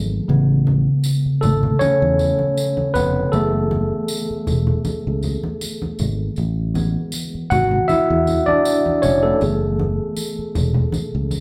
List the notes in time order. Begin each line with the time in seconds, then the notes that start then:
Already playing: G#1 E3 F#3 A3 B3 G#4
0.28 A1 C#3 G#3 B3, muted conga
0.67 high conga
1.04 tambourine, muted conga
1.26 muted fingered electric bass stroke
1.41 G#1 A3 A4, tambourine, muted conga, low conga
1.63 low conga
1.79 C#4 C#5, muted fingered electric bass stroke, tambourine, muted conga, high conga
2.02 E2
2.19 tambourine, muted conga, high conga
2.39 high conga
2.57 tambourine
2.77 high conga
2.94 F1 B3 B4, tambourine, muted conga, low conga
3.32 F#1 E3 A3 B3 G#4 A4, tambourine, muted conga
3.71 muted conga, high conga
4.08 tambourine
4.31 muted fingered electric bass stroke
4.47 E1, tambourine, low conga
4.67 low conga
4.85 muted fingered electric bass stroke, tambourine, muted conga, high conga
5.07 C#2
5.23 tambourine, muted conga, high conga
5.44 high conga
5.61 tambourine, muted conga
5.82 high conga
5.99 G#1, tambourine, muted conga, low conga
6.36 A1, tambourine, muted conga
6.74 E3 G#3 B3, tambourine, high conga
7.12 tambourine, muted conga
7.35 muted fingered electric bass stroke
7.50 G#1 F#4 F#5, tambourine, muted conga, low conga
7.71 low conga
7.88 E4 E5, muted fingered electric bass stroke, tambourine, muted conga, high conga
8.10 E2
8.27 tambourine, muted conga, high conga
8.46 D4 D5, high conga
8.65 tambourine
8.86 high conga
9.02 F1 C#4 C#5, tambourine, muted conga, low conga
9.23 A3 A4
9.41 F#1 E3 A3 B3 G#4, tambourine, muted conga
9.79 muted conga, high conga
10.16 tambourine, muted conga
10.39 muted fingered electric bass stroke
10.55 E1, tambourine, muted conga, low conga
10.74 low conga
10.92 muted fingered electric bass stroke, tambourine, muted conga, high conga
11.15 C#2
11.31 tambourine, muted conga, high conga